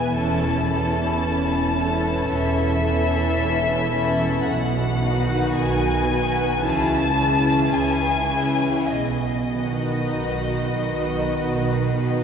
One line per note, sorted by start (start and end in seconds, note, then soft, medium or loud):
0.00 0.14 E3 soft
0.00 0.14 B3 soft
0.00 0.15 E4 soft
0.00 0.16 B4 soft
0.00 0.16 G#5 medium
0.15 1.13 E1 soft
0.15 1.12 E2 soft
0.15 0.70 E3 soft
0.15 0.70 C#4 soft
0.15 0.71 E4 soft
0.15 0.70 A4 soft
0.15 2.28 A5 medium
0.71 1.76 E3 soft
0.71 1.76 C#4 soft
0.71 1.78 E4 soft
0.71 1.78 A4 soft
1.25 2.19 E1 soft
1.25 2.19 E2 soft
1.78 2.83 E3 soft
1.78 2.82 C#4 soft
1.78 2.83 E4 soft
1.78 2.83 A4 soft
2.30 3.25 E1 soft
2.30 3.25 E2 soft
2.30 4.46 E5 medium
2.85 3.90 E3 soft
2.85 3.90 C#4 soft
2.85 3.91 E4 soft
2.85 3.90 A4 soft
3.38 4.34 E1 medium
3.38 4.34 E2 soft
3.92 4.46 E3 soft
3.92 4.45 C#4 soft
3.92 4.46 E4 soft
3.92 4.46 A4 soft
4.45 5.42 B1 medium
4.45 5.42 B2 medium
4.45 5.54 F#5 medium
5.00 6.07 D#3 soft
5.00 6.07 D#4 soft
5.00 6.07 F#4 soft
5.00 6.07 B4 soft
5.54 6.50 B1 medium
5.54 6.51 B2 soft
5.54 6.61 G#5 medium
6.08 6.63 D#3 soft
6.08 6.62 D#4 soft
6.08 6.63 F#4 soft
6.08 6.63 B4 soft
6.62 7.60 C#2 medium
6.62 7.60 C#3 medium
6.62 7.17 E3 soft
6.62 7.16 C#4 soft
6.62 7.18 E4 soft
6.62 7.18 G#4 soft
6.62 7.73 A5 medium
7.18 8.27 E3 soft
7.18 8.27 C#4 soft
7.18 8.28 E4 soft
7.18 8.28 G#4 soft
7.71 8.75 C#2 medium
7.71 8.75 C#3 soft
7.71 8.89 G#5 medium
8.28 8.89 E3 soft
8.28 8.89 C#4 soft
8.28 8.89 E4 soft
8.28 8.89 G#4 soft
8.89 10.01 B1 soft
8.89 10.00 B2 soft
8.89 12.24 D#5 medium
9.52 10.75 D#3 soft
9.52 10.75 D#4 soft
9.52 10.75 F#4 soft
9.52 10.76 B4 soft
10.14 11.25 B1 soft
10.14 11.24 B2 soft
10.77 11.97 D#3 soft
10.77 11.97 D#4 soft
10.77 11.97 F#4 soft
10.77 11.97 B4 soft
11.38 12.24 B1 soft
11.38 12.24 B2 soft
11.99 12.24 D#3 soft
11.99 12.24 D#4 soft
11.99 12.24 F#4 soft
11.99 12.24 B4 soft